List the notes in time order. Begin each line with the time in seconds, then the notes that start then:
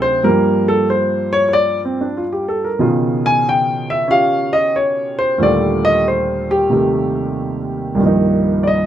Already playing: D2 C3 F#3 D#4
0.02 C5
0.23 G2 F3 G3 A#3 A#4
0.68 A4
0.90 C5
1.33 C#5
1.49 C#5
1.53 D5
1.85 C4
2.01 D4
2.17 F4
2.33 G4
2.48 A4
2.64 A#4
2.79 B2 C#3 D#3 F4
3.26 G#5
3.49 G5
3.90 E5
4.08 C#4 F4 G4 F5
4.53 D#5
4.76 C#5
5.19 C5
5.38 D#2 A#2 D3 G3
5.42 A3 F4 D5
5.85 D#5
6.08 C5
6.51 G4
6.70 C3 D#3 A3 G4
7.95 C2 G2
7.99 D#3 F3
8.04 A#3 D#4
8.63 D5
8.67 D#5